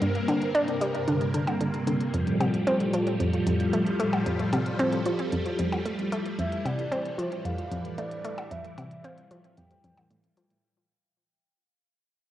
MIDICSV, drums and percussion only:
0, 0, Header, 1, 3, 480
1, 0, Start_track
1, 0, Tempo, 530973
1, 15, Time_signature, 4, 2, 24, 8
1, 11123, End_track
2, 0, Start_track
2, 0, Title_t, "Percussion blips"
2, 257, Note_on_c, 9, 77, 52
2, 347, Note_off_c, 9, 77, 0
2, 1333, Note_on_c, 9, 77, 53
2, 1423, Note_off_c, 9, 77, 0
2, 2175, Note_on_c, 9, 77, 53
2, 2265, Note_off_c, 9, 77, 0
2, 3734, Note_on_c, 9, 77, 65
2, 3824, Note_off_c, 9, 77, 0
2, 4093, Note_on_c, 9, 77, 51
2, 4183, Note_off_c, 9, 77, 0
2, 5175, Note_on_c, 9, 77, 52
2, 5265, Note_off_c, 9, 77, 0
2, 6016, Note_on_c, 9, 77, 53
2, 6107, Note_off_c, 9, 77, 0
2, 7574, Note_on_c, 9, 77, 70
2, 7665, Note_off_c, 9, 77, 0
2, 7935, Note_on_c, 9, 77, 57
2, 8025, Note_off_c, 9, 77, 0
2, 9016, Note_on_c, 9, 77, 59
2, 9106, Note_off_c, 9, 77, 0
2, 11123, End_track
3, 0, Start_track
3, 0, Title_t, "Drums"
3, 17, Note_on_c, 9, 42, 66
3, 107, Note_off_c, 9, 42, 0
3, 137, Note_on_c, 9, 42, 40
3, 228, Note_off_c, 9, 42, 0
3, 257, Note_on_c, 9, 42, 91
3, 347, Note_off_c, 9, 42, 0
3, 377, Note_on_c, 9, 42, 39
3, 468, Note_off_c, 9, 42, 0
3, 496, Note_on_c, 9, 42, 66
3, 587, Note_off_c, 9, 42, 0
3, 615, Note_on_c, 9, 42, 40
3, 706, Note_off_c, 9, 42, 0
3, 736, Note_on_c, 9, 42, 95
3, 826, Note_off_c, 9, 42, 0
3, 856, Note_on_c, 9, 42, 39
3, 946, Note_off_c, 9, 42, 0
3, 974, Note_on_c, 9, 42, 66
3, 1065, Note_off_c, 9, 42, 0
3, 1095, Note_on_c, 9, 42, 39
3, 1185, Note_off_c, 9, 42, 0
3, 1214, Note_on_c, 9, 42, 89
3, 1304, Note_off_c, 9, 42, 0
3, 1333, Note_on_c, 9, 42, 40
3, 1423, Note_off_c, 9, 42, 0
3, 1453, Note_on_c, 9, 42, 65
3, 1543, Note_off_c, 9, 42, 0
3, 1573, Note_on_c, 9, 42, 41
3, 1663, Note_off_c, 9, 42, 0
3, 1692, Note_on_c, 9, 42, 92
3, 1783, Note_off_c, 9, 42, 0
3, 1813, Note_on_c, 9, 42, 41
3, 1904, Note_off_c, 9, 42, 0
3, 1933, Note_on_c, 9, 42, 63
3, 2023, Note_off_c, 9, 42, 0
3, 2053, Note_on_c, 9, 42, 37
3, 2144, Note_off_c, 9, 42, 0
3, 2175, Note_on_c, 9, 42, 91
3, 2265, Note_off_c, 9, 42, 0
3, 2295, Note_on_c, 9, 42, 38
3, 2386, Note_off_c, 9, 42, 0
3, 2414, Note_on_c, 9, 42, 65
3, 2505, Note_off_c, 9, 42, 0
3, 2534, Note_on_c, 9, 42, 38
3, 2625, Note_off_c, 9, 42, 0
3, 2654, Note_on_c, 9, 42, 90
3, 2744, Note_off_c, 9, 42, 0
3, 2774, Note_on_c, 9, 42, 38
3, 2864, Note_off_c, 9, 42, 0
3, 2894, Note_on_c, 9, 42, 67
3, 2984, Note_off_c, 9, 42, 0
3, 3014, Note_on_c, 9, 42, 37
3, 3105, Note_off_c, 9, 42, 0
3, 3134, Note_on_c, 9, 42, 85
3, 3224, Note_off_c, 9, 42, 0
3, 3254, Note_on_c, 9, 42, 38
3, 3345, Note_off_c, 9, 42, 0
3, 3375, Note_on_c, 9, 42, 64
3, 3465, Note_off_c, 9, 42, 0
3, 3494, Note_on_c, 9, 42, 39
3, 3585, Note_off_c, 9, 42, 0
3, 3614, Note_on_c, 9, 42, 90
3, 3704, Note_off_c, 9, 42, 0
3, 3734, Note_on_c, 9, 42, 38
3, 3824, Note_off_c, 9, 42, 0
3, 3854, Note_on_c, 9, 42, 59
3, 3944, Note_off_c, 9, 42, 0
3, 3973, Note_on_c, 9, 42, 36
3, 4063, Note_off_c, 9, 42, 0
3, 4093, Note_on_c, 9, 42, 89
3, 4183, Note_off_c, 9, 42, 0
3, 4213, Note_on_c, 9, 42, 37
3, 4304, Note_off_c, 9, 42, 0
3, 4333, Note_on_c, 9, 42, 61
3, 4423, Note_off_c, 9, 42, 0
3, 4453, Note_on_c, 9, 42, 37
3, 4543, Note_off_c, 9, 42, 0
3, 4571, Note_on_c, 9, 42, 86
3, 4661, Note_off_c, 9, 42, 0
3, 4693, Note_on_c, 9, 42, 36
3, 4783, Note_off_c, 9, 42, 0
3, 4812, Note_on_c, 9, 42, 61
3, 4903, Note_off_c, 9, 42, 0
3, 4933, Note_on_c, 9, 42, 38
3, 5024, Note_off_c, 9, 42, 0
3, 5052, Note_on_c, 9, 42, 86
3, 5143, Note_off_c, 9, 42, 0
3, 5175, Note_on_c, 9, 42, 39
3, 5265, Note_off_c, 9, 42, 0
3, 5293, Note_on_c, 9, 42, 63
3, 5383, Note_off_c, 9, 42, 0
3, 5414, Note_on_c, 9, 42, 37
3, 5504, Note_off_c, 9, 42, 0
3, 5534, Note_on_c, 9, 42, 88
3, 5624, Note_off_c, 9, 42, 0
3, 5655, Note_on_c, 9, 42, 37
3, 5745, Note_off_c, 9, 42, 0
3, 5774, Note_on_c, 9, 42, 62
3, 5865, Note_off_c, 9, 42, 0
3, 5896, Note_on_c, 9, 42, 38
3, 5986, Note_off_c, 9, 42, 0
3, 6016, Note_on_c, 9, 42, 84
3, 6107, Note_off_c, 9, 42, 0
3, 6137, Note_on_c, 9, 42, 38
3, 6227, Note_off_c, 9, 42, 0
3, 6255, Note_on_c, 9, 42, 62
3, 6346, Note_off_c, 9, 42, 0
3, 6377, Note_on_c, 9, 42, 38
3, 6467, Note_off_c, 9, 42, 0
3, 6498, Note_on_c, 9, 42, 89
3, 6588, Note_off_c, 9, 42, 0
3, 6616, Note_on_c, 9, 42, 36
3, 6706, Note_off_c, 9, 42, 0
3, 6736, Note_on_c, 9, 42, 63
3, 6827, Note_off_c, 9, 42, 0
3, 6856, Note_on_c, 9, 42, 36
3, 6946, Note_off_c, 9, 42, 0
3, 6975, Note_on_c, 9, 42, 83
3, 7065, Note_off_c, 9, 42, 0
3, 7096, Note_on_c, 9, 42, 38
3, 7187, Note_off_c, 9, 42, 0
3, 7215, Note_on_c, 9, 42, 63
3, 7306, Note_off_c, 9, 42, 0
3, 7335, Note_on_c, 9, 42, 37
3, 7425, Note_off_c, 9, 42, 0
3, 7454, Note_on_c, 9, 42, 88
3, 7544, Note_off_c, 9, 42, 0
3, 7574, Note_on_c, 9, 42, 37
3, 7665, Note_off_c, 9, 42, 0
3, 7694, Note_on_c, 9, 42, 63
3, 7785, Note_off_c, 9, 42, 0
3, 7815, Note_on_c, 9, 42, 36
3, 7905, Note_off_c, 9, 42, 0
3, 7935, Note_on_c, 9, 42, 84
3, 8025, Note_off_c, 9, 42, 0
3, 8055, Note_on_c, 9, 42, 37
3, 8145, Note_off_c, 9, 42, 0
3, 8174, Note_on_c, 9, 42, 63
3, 8264, Note_off_c, 9, 42, 0
3, 8295, Note_on_c, 9, 42, 39
3, 8385, Note_off_c, 9, 42, 0
3, 8415, Note_on_c, 9, 42, 91
3, 8505, Note_off_c, 9, 42, 0
3, 8535, Note_on_c, 9, 42, 36
3, 8626, Note_off_c, 9, 42, 0
3, 8653, Note_on_c, 9, 42, 64
3, 8744, Note_off_c, 9, 42, 0
3, 8774, Note_on_c, 9, 42, 36
3, 8864, Note_off_c, 9, 42, 0
3, 8894, Note_on_c, 9, 42, 85
3, 8984, Note_off_c, 9, 42, 0
3, 9016, Note_on_c, 9, 42, 38
3, 9106, Note_off_c, 9, 42, 0
3, 9134, Note_on_c, 9, 42, 63
3, 9225, Note_off_c, 9, 42, 0
3, 9254, Note_on_c, 9, 42, 37
3, 9345, Note_off_c, 9, 42, 0
3, 9374, Note_on_c, 9, 42, 89
3, 9465, Note_off_c, 9, 42, 0
3, 9495, Note_on_c, 9, 42, 39
3, 9586, Note_off_c, 9, 42, 0
3, 11123, End_track
0, 0, End_of_file